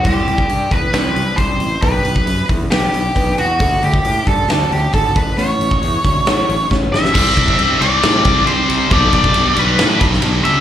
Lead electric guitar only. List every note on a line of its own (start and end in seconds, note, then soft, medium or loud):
0.05 0.74 G4 medium
0.72 1.37 B4 loud
1.37 1.82 C5 medium
1.82 2.45 B4 medium
2.71 3.34 G4 medium
3.39 3.84 F#4 medium
3.84 4.25 G4 medium
4.28 4.49 A4 medium
4.50 4.72 A4 loud
4.73 4.93 G4 medium
4.94 5.17 A4 medium
5.17 5.38 B4 medium
5.38 6.67 C#5 medium
6.92 7.83 E5 loud
7.81 8.47 D5 loud
8.47 8.92 C5 loud
8.93 9.12 D5 loud
9.15 9.59 D5 loud
9.59 9.99 B4 medium
10.44 10.61 E5 loud